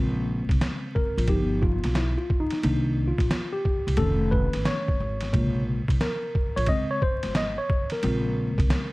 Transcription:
Already playing: A#1 C#3 G#3 C4
0.49 C2, kick, ride
0.61 snare, hi-hat pedal, ride
0.95 A#4, kick
1.17 A#1, ride
1.28 G1 F3 B3 D#4 G4, kick, ride
1.62 F4, kick
1.84 B1, snare, ride
1.95 E4, snare, hi-hat pedal, ride
2.18 F4
2.30 kick
2.40 D#4
2.50 snare, ride
2.63 C2 D#3 A#3 D4, ride
3.07 F4
3.18 A#1, kick, ride
3.31 snare, hi-hat pedal, ride
3.53 G4
3.65 kick
3.87 C2, ride
3.97 F1 D#3 A3 C#4 A4, kick, ride
4.31 B4, kick
4.53 G#1, snare, ride
4.65 C#5, snare, hi-hat pedal, ride
4.88 kick
5.00 G#1
5.21 snare, ride
5.33 A#1 C3 C#3 G#3, kick, ride
5.88 C2, kick, ride
6.01 A#4, snare, hi-hat pedal, ride
6.35 kick
6.56 A#1 C#5, ride
6.66 C#3 G#3 C4 D#5, kick, ride
6.91 C#5
7.02 C5, kick
7.23 G#1, snare, ride
7.35 D#5, snare, hi-hat pedal, ride
7.58 C#5
7.70 kick
7.90 A#4, snare, ride
8.03 A#1 C#3 G#3 C4, ride
8.58 C2, kick, ride
8.70 snare, hi-hat pedal, ride

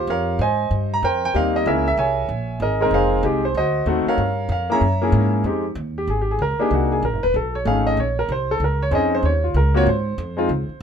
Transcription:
Already playing: F4 G4
0.07 F2 A#4 C#5 F5
0.39 G#2 C5 D#5 G#5
0.71 G2
0.94 A#5
1.03 F2 A#4 C5 G5
1.25 G5
1.34 D#2 G3 A#3 C4 D#4 F5
1.56 D#5
1.66 C#2 G#3 A#3 C#4 E4 G#4 A#4 E5
1.88 E5
1.98 C2 C#5 E5 G#5
2.29 A#1
2.60 G#1 G#4 A#4 D#5
2.80 G#3 C4 D#4 A#4
2.91 F1 G#4 C5 F5
3.23 C2 G#3 C4 D#4 G4
3.45 C5
3.55 D2 F#4 C5 D#5
3.86 D#2 A3 C4 D#4 F#4
4.06 A#4 C#5 F5, muted upright bass stroke
4.18 G2
4.49 F2 F5
4.70 A#3 C#4 E4 G#4 C#5 E5 A#5
4.81 F#2
5.02 A#3 C#4 E4 G#4
5.12 G#2
5.44 F2 G#3 C4 D#4 G4
5.75 D#2
5.98 G4
6.07 G#1 G#4
6.21 G4
6.31 G#4
6.39 C#2 A#4
6.59 A#3 D4 D#4 G4 G#4, muted upright bass stroke
6.71 C2 F#4
6.92 G#4
7.03 A#1 A#4
7.13 F#1
7.23 D#1 B4
7.34 B1 A4
7.55 C#5
7.65 G#1 A3 C#4 D#4 G#4 F5
7.87 D#5
7.97 A#1 C#5
8.19 A#4
8.29 C2 C5
8.51 A4
8.60 C#2
8.64 A#4
8.83 C#5
8.91 F2 C4 C#4 D#4 G#4 D#5
9.15 C5
9.23 D#2 C#5
9.44 F4
9.54 C#2 A#4
9.74 A#3 C4 F4 F#4 C#5
9.86 G#2 C5
10.18 F2
10.37 G#3 C4 D#4 F4
10.49 C#2
10.69 muted upright bass stroke

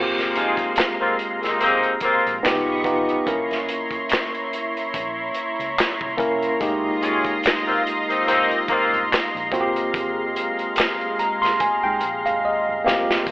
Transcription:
Already playing: G#1 G#3 A#3 C4 F4 F5 A#5 C6
0.03 G4
0.18 snare, closed hi-hat
0.35 D#4 F4 G#4, closed hi-hat
0.57 kick, closed hi-hat
0.76 snare, clap, closed hi-hat
1.00 A#3 C4 F4
1.19 closed hi-hat
1.41 A#3 C4 D#4, snare, closed hi-hat
1.60 A#3 C4 D#4, closed hi-hat
1.83 closed hi-hat
2.00 A#3 C4 F4, muted fingered electric bass stroke, kick, closed hi-hat
2.26 A#1, closed hi-hat
2.43 C#2 B3 D#4 F4 G4 D#5 B5 C#6, snare, clap, closed hi-hat
2.67 B1
2.84 G#1 B3 D#4 F4 G4, kick, closed hi-hat
3.09 closed hi-hat
3.26 G1 A#3 C#4 E4 A#4 C#5 A#5 C6, kick, closed hi-hat
3.51 snare, closed hi-hat
3.69 closed hi-hat
3.91 kick, closed hi-hat
4.09 snare, clap, closed hi-hat
4.34 closed hi-hat
4.53 closed hi-hat
4.77 closed hi-hat
4.94 A#1, kick, closed hi-hat
5.34 closed hi-hat
5.59 C#2, closed hi-hat
5.79 snare, clap, closed hi-hat
6.01 C2, kick
6.17 C2 A#3 C#4 E4 A#4, kick, closed hi-hat
6.42 closed hi-hat
6.60 F1 G#3 A#3 D#4 F4 G4 D#5, kick, closed hi-hat
7.02 C#4 F4 G#4, closed hi-hat
7.25 kick, closed hi-hat
7.43 snare, clap, closed hi-hat
7.67 A#3 C4 F4, closed hi-hat
7.87 closed hi-hat
8.08 A#3 C4 D#4, closed hi-hat
8.27 A#3 C4 D#4, closed hi-hat
8.51 closed hi-hat
8.68 A#3 C4 F4, muted fingered electric bass stroke, kick, closed hi-hat
8.93 G1, closed hi-hat
9.13 snare, clap, closed hi-hat
9.35 A#1, closed hi-hat
9.51 G#1 G#3 A#3 C4 F4 F#4 F5, kick, closed hi-hat
9.61 G4
9.76 closed hi-hat
9.94 G#1, kick, closed hi-hat
10.36 closed hi-hat
10.59 closed hi-hat
10.76 snare, clap, closed hi-hat
11.01 closed hi-hat
11.19 A#5, closed hi-hat
11.42 C6, snare, closed hi-hat
11.60 G#5, kick, closed hi-hat
11.84 G#2 G5
12.01 A#1, closed hi-hat
12.26 G#1 F5, closed hi-hat
12.45 D#5
12.69 G1
12.84 G1 A#3 C4 F4 G4 F5, snare
13.11 snare
13.25 C2 D#3 G3 A#3 C4 D#4 G4 D#5 A#5 C6, kick, closed hi-hat

